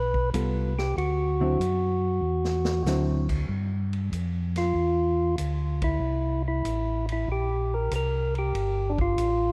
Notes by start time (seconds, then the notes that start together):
Already playing: B1 B4
0.14 kick
0.33 C2 G3 B3 F4 A4, kick, hi-hat pedal, ride
0.78 G4, snare
0.97 D2 F#4, kick, ride
1.40 D3 F#3 C4 E4
1.60 F#2, kick, hi-hat pedal, ride
2.21 E2
2.44 snare
2.65 snare
2.84 D2 D3 F#3 C4 E4, snare, hi-hat pedal
3.29 kick, crash
3.49 G2, kick
3.93 ride
4.12 F2, kick, hi-hat pedal, ride
4.56 F4, snare, ride
4.75 E2, kick
5.38 D2, kick, hi-hat pedal, ride
5.82 E4, kick, ride
6.00 C2
6.48 E4
6.65 A1, kick, hi-hat pedal, ride
7.09 E4, ride
7.28 A#1 G4, kick
7.74 A#4
7.91 C2, kick, hi-hat pedal, ride
7.96 A#4
8.35 G4, ride
8.55 G1, kick, ride
8.90 D4
8.98 F4, kick
9.18 A1, kick, hi-hat pedal, ride